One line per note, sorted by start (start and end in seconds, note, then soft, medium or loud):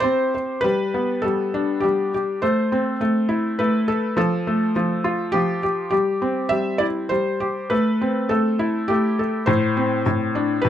0.00 0.63 C4 medium
0.00 0.33 E4 medium
0.00 0.64 G4 medium
0.00 0.33 C5 medium
0.35 0.64 C5 medium
0.61 1.23 G3 medium
0.61 1.24 B4 medium
0.94 2.13 B3 medium
1.22 1.82 G3 medium
1.22 1.84 A4 medium
1.54 2.42 D4 medium
1.80 2.42 G3 medium
1.80 2.13 G4 medium
2.14 2.43 G4 medium
2.42 2.99 A3 medium
2.42 2.96 C5 medium
2.72 3.88 C4 medium
3.01 3.58 A3 medium
3.29 4.16 E4 medium
3.59 4.17 A3 medium
3.59 4.18 B4 medium
3.88 4.16 A4 medium
4.17 4.74 F3 medium
4.17 5.36 A4 medium
4.47 5.62 A3 medium
4.76 5.33 F3 medium
5.04 5.92 F4 medium
5.32 5.92 F3 medium
5.32 5.62 G4 medium
5.63 5.89 G4 medium
5.91 6.49 G3 medium
5.91 6.52 G4 medium
6.22 7.10 C4 medium
6.49 7.09 G3 medium
6.49 6.77 E5 medium
6.78 7.10 E4 medium
6.78 6.85 D5 medium
7.09 7.70 G3 medium
7.09 7.71 C5 medium
7.40 7.70 G4 medium
7.70 8.29 A3 medium
7.70 8.31 B4 medium
8.02 9.19 C4 medium
8.29 8.88 A3 medium
8.29 8.90 A4 medium
8.59 9.47 E4 medium
8.88 9.48 A3 medium
8.88 9.43 G4 medium
9.19 9.48 A4 medium
9.46 10.05 A2 medium
9.46 10.01 C5 medium
9.77 10.69 C4 medium
10.06 10.63 A2 medium
10.35 10.69 D4 medium
10.62 10.69 A2 medium
10.62 10.69 B4 medium